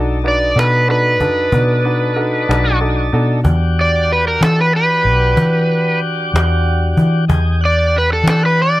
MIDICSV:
0, 0, Header, 1, 6, 480
1, 0, Start_track
1, 0, Key_signature, 1, "minor"
1, 0, Tempo, 641026
1, 2582, Time_signature, 12, 3, 24, 8
1, 6589, End_track
2, 0, Start_track
2, 0, Title_t, "Electric slide guitar"
2, 0, Program_c, 0, 29
2, 210, Note_on_c, 0, 74, 62
2, 428, Note_off_c, 0, 74, 0
2, 444, Note_on_c, 0, 71, 67
2, 665, Note_off_c, 0, 71, 0
2, 682, Note_on_c, 0, 71, 68
2, 2083, Note_off_c, 0, 71, 0
2, 2852, Note_on_c, 0, 74, 79
2, 3070, Note_off_c, 0, 74, 0
2, 3089, Note_on_c, 0, 71, 75
2, 3192, Note_off_c, 0, 71, 0
2, 3204, Note_on_c, 0, 70, 73
2, 3310, Note_off_c, 0, 70, 0
2, 3328, Note_on_c, 0, 69, 76
2, 3432, Note_off_c, 0, 69, 0
2, 3449, Note_on_c, 0, 71, 69
2, 3552, Note_off_c, 0, 71, 0
2, 3567, Note_on_c, 0, 71, 72
2, 4486, Note_off_c, 0, 71, 0
2, 5731, Note_on_c, 0, 74, 82
2, 5949, Note_off_c, 0, 74, 0
2, 5977, Note_on_c, 0, 71, 83
2, 6076, Note_off_c, 0, 71, 0
2, 6089, Note_on_c, 0, 69, 86
2, 6191, Note_off_c, 0, 69, 0
2, 6211, Note_on_c, 0, 69, 82
2, 6312, Note_off_c, 0, 69, 0
2, 6334, Note_on_c, 0, 71, 79
2, 6434, Note_off_c, 0, 71, 0
2, 6453, Note_on_c, 0, 74, 76
2, 6589, Note_off_c, 0, 74, 0
2, 6589, End_track
3, 0, Start_track
3, 0, Title_t, "Tonewheel organ"
3, 0, Program_c, 1, 16
3, 0, Note_on_c, 1, 62, 62
3, 0, Note_on_c, 1, 63, 59
3, 0, Note_on_c, 1, 69, 61
3, 2549, Note_off_c, 1, 63, 0
3, 2551, Note_off_c, 1, 62, 0
3, 2552, Note_off_c, 1, 69, 0
3, 2574, Note_on_c, 1, 66, 64
3, 2575, Note_on_c, 1, 62, 67
3, 2577, Note_on_c, 1, 67, 68
3, 5428, Note_off_c, 1, 62, 0
3, 5428, Note_off_c, 1, 66, 0
3, 5430, Note_off_c, 1, 67, 0
3, 5454, Note_on_c, 1, 63, 60
3, 5458, Note_on_c, 1, 68, 57
3, 5460, Note_on_c, 1, 67, 65
3, 5688, Note_off_c, 1, 67, 0
3, 5696, Note_on_c, 1, 62, 59
3, 5696, Note_on_c, 1, 67, 60
3, 5697, Note_off_c, 1, 63, 0
3, 5699, Note_off_c, 1, 68, 0
3, 5699, Note_on_c, 1, 78, 63
3, 6589, Note_off_c, 1, 62, 0
3, 6589, Note_off_c, 1, 67, 0
3, 6589, Note_off_c, 1, 78, 0
3, 6589, End_track
4, 0, Start_track
4, 0, Title_t, "Upright piano"
4, 0, Program_c, 2, 0
4, 0, Note_on_c, 2, 62, 58
4, 0, Note_on_c, 2, 63, 51
4, 0, Note_on_c, 2, 66, 55
4, 0, Note_on_c, 2, 69, 69
4, 119, Note_off_c, 2, 62, 0
4, 120, Note_off_c, 2, 63, 0
4, 120, Note_off_c, 2, 69, 0
4, 122, Note_off_c, 2, 66, 0
4, 177, Note_on_c, 2, 62, 42
4, 177, Note_on_c, 2, 63, 44
4, 180, Note_on_c, 2, 66, 41
4, 182, Note_on_c, 2, 71, 51
4, 359, Note_off_c, 2, 62, 0
4, 359, Note_off_c, 2, 63, 0
4, 360, Note_off_c, 2, 66, 0
4, 361, Note_off_c, 2, 71, 0
4, 419, Note_on_c, 2, 62, 46
4, 419, Note_on_c, 2, 66, 42
4, 420, Note_on_c, 2, 63, 43
4, 422, Note_on_c, 2, 69, 50
4, 599, Note_off_c, 2, 66, 0
4, 600, Note_off_c, 2, 62, 0
4, 600, Note_off_c, 2, 63, 0
4, 601, Note_off_c, 2, 69, 0
4, 660, Note_on_c, 2, 62, 49
4, 660, Note_on_c, 2, 63, 44
4, 662, Note_on_c, 2, 66, 45
4, 664, Note_on_c, 2, 69, 50
4, 840, Note_off_c, 2, 62, 0
4, 840, Note_off_c, 2, 63, 0
4, 841, Note_off_c, 2, 66, 0
4, 842, Note_off_c, 2, 69, 0
4, 898, Note_on_c, 2, 62, 50
4, 903, Note_on_c, 2, 66, 41
4, 904, Note_on_c, 2, 63, 41
4, 905, Note_on_c, 2, 69, 52
4, 1079, Note_off_c, 2, 62, 0
4, 1082, Note_off_c, 2, 66, 0
4, 1083, Note_off_c, 2, 63, 0
4, 1083, Note_off_c, 2, 69, 0
4, 1139, Note_on_c, 2, 63, 43
4, 1142, Note_on_c, 2, 62, 48
4, 1142, Note_on_c, 2, 66, 42
4, 1142, Note_on_c, 2, 71, 52
4, 1320, Note_off_c, 2, 63, 0
4, 1321, Note_off_c, 2, 62, 0
4, 1321, Note_off_c, 2, 71, 0
4, 1322, Note_off_c, 2, 66, 0
4, 1382, Note_on_c, 2, 62, 57
4, 1384, Note_on_c, 2, 71, 67
4, 1385, Note_on_c, 2, 63, 48
4, 1388, Note_on_c, 2, 66, 49
4, 1562, Note_off_c, 2, 62, 0
4, 1563, Note_off_c, 2, 63, 0
4, 1563, Note_off_c, 2, 71, 0
4, 1565, Note_off_c, 2, 66, 0
4, 1616, Note_on_c, 2, 62, 55
4, 1618, Note_on_c, 2, 63, 52
4, 1619, Note_on_c, 2, 69, 58
4, 1620, Note_on_c, 2, 66, 50
4, 1799, Note_off_c, 2, 62, 0
4, 1800, Note_off_c, 2, 63, 0
4, 1800, Note_off_c, 2, 69, 0
4, 1801, Note_off_c, 2, 66, 0
4, 1861, Note_on_c, 2, 62, 59
4, 1862, Note_on_c, 2, 63, 55
4, 1864, Note_on_c, 2, 66, 54
4, 1868, Note_on_c, 2, 69, 65
4, 2041, Note_off_c, 2, 62, 0
4, 2042, Note_off_c, 2, 63, 0
4, 2043, Note_off_c, 2, 66, 0
4, 2045, Note_off_c, 2, 69, 0
4, 2102, Note_on_c, 2, 62, 51
4, 2102, Note_on_c, 2, 63, 50
4, 2103, Note_on_c, 2, 66, 50
4, 2104, Note_on_c, 2, 69, 60
4, 2282, Note_off_c, 2, 62, 0
4, 2282, Note_off_c, 2, 63, 0
4, 2282, Note_off_c, 2, 66, 0
4, 2283, Note_off_c, 2, 69, 0
4, 2340, Note_on_c, 2, 62, 58
4, 2341, Note_on_c, 2, 63, 52
4, 2345, Note_on_c, 2, 66, 49
4, 2349, Note_on_c, 2, 69, 64
4, 2521, Note_off_c, 2, 62, 0
4, 2521, Note_off_c, 2, 63, 0
4, 2524, Note_off_c, 2, 66, 0
4, 2526, Note_off_c, 2, 69, 0
4, 6589, End_track
5, 0, Start_track
5, 0, Title_t, "Fingered electric bass"
5, 0, Program_c, 3, 33
5, 0, Note_on_c, 3, 35, 79
5, 391, Note_off_c, 3, 35, 0
5, 418, Note_on_c, 3, 47, 74
5, 901, Note_off_c, 3, 47, 0
5, 901, Note_on_c, 3, 42, 68
5, 1122, Note_off_c, 3, 42, 0
5, 1142, Note_on_c, 3, 47, 82
5, 1832, Note_off_c, 3, 47, 0
5, 1865, Note_on_c, 3, 35, 69
5, 2313, Note_off_c, 3, 35, 0
5, 2344, Note_on_c, 3, 47, 69
5, 2564, Note_off_c, 3, 47, 0
5, 2583, Note_on_c, 3, 40, 81
5, 3273, Note_off_c, 3, 40, 0
5, 3301, Note_on_c, 3, 52, 75
5, 3779, Note_on_c, 3, 35, 74
5, 3790, Note_off_c, 3, 52, 0
5, 4001, Note_off_c, 3, 35, 0
5, 4020, Note_on_c, 3, 52, 94
5, 4711, Note_off_c, 3, 52, 0
5, 4745, Note_on_c, 3, 40, 88
5, 5193, Note_off_c, 3, 40, 0
5, 5219, Note_on_c, 3, 52, 82
5, 5441, Note_off_c, 3, 52, 0
5, 5463, Note_on_c, 3, 40, 94
5, 6151, Note_off_c, 3, 40, 0
5, 6167, Note_on_c, 3, 52, 83
5, 6589, Note_off_c, 3, 52, 0
5, 6589, End_track
6, 0, Start_track
6, 0, Title_t, "Cajon"
6, 188, Note_on_c, 9, 38, 28
6, 263, Note_off_c, 9, 38, 0
6, 441, Note_on_c, 9, 38, 90
6, 516, Note_off_c, 9, 38, 0
6, 668, Note_on_c, 9, 38, 28
6, 742, Note_off_c, 9, 38, 0
6, 901, Note_on_c, 9, 36, 69
6, 976, Note_off_c, 9, 36, 0
6, 1141, Note_on_c, 9, 36, 93
6, 1216, Note_off_c, 9, 36, 0
6, 1381, Note_on_c, 9, 38, 30
6, 1456, Note_off_c, 9, 38, 0
6, 1622, Note_on_c, 9, 38, 30
6, 1697, Note_off_c, 9, 38, 0
6, 1879, Note_on_c, 9, 38, 91
6, 1954, Note_off_c, 9, 38, 0
6, 2101, Note_on_c, 9, 38, 26
6, 2176, Note_off_c, 9, 38, 0
6, 2343, Note_on_c, 9, 38, 28
6, 2418, Note_off_c, 9, 38, 0
6, 2581, Note_on_c, 9, 36, 92
6, 2656, Note_off_c, 9, 36, 0
6, 2820, Note_on_c, 9, 38, 29
6, 2895, Note_off_c, 9, 38, 0
6, 3059, Note_on_c, 9, 38, 28
6, 3134, Note_off_c, 9, 38, 0
6, 3314, Note_on_c, 9, 38, 100
6, 3389, Note_off_c, 9, 38, 0
6, 3543, Note_on_c, 9, 38, 28
6, 3618, Note_off_c, 9, 38, 0
6, 3783, Note_on_c, 9, 38, 33
6, 3858, Note_off_c, 9, 38, 0
6, 4023, Note_on_c, 9, 36, 100
6, 4098, Note_off_c, 9, 36, 0
6, 4267, Note_on_c, 9, 38, 32
6, 4341, Note_off_c, 9, 38, 0
6, 4506, Note_on_c, 9, 38, 29
6, 4580, Note_off_c, 9, 38, 0
6, 4760, Note_on_c, 9, 38, 99
6, 4835, Note_off_c, 9, 38, 0
6, 4987, Note_on_c, 9, 38, 33
6, 5062, Note_off_c, 9, 38, 0
6, 5222, Note_on_c, 9, 36, 73
6, 5297, Note_off_c, 9, 36, 0
6, 5463, Note_on_c, 9, 36, 101
6, 5538, Note_off_c, 9, 36, 0
6, 5704, Note_on_c, 9, 38, 32
6, 5779, Note_off_c, 9, 38, 0
6, 5945, Note_on_c, 9, 38, 31
6, 6020, Note_off_c, 9, 38, 0
6, 6196, Note_on_c, 9, 38, 106
6, 6271, Note_off_c, 9, 38, 0
6, 6424, Note_on_c, 9, 38, 30
6, 6499, Note_off_c, 9, 38, 0
6, 6589, End_track
0, 0, End_of_file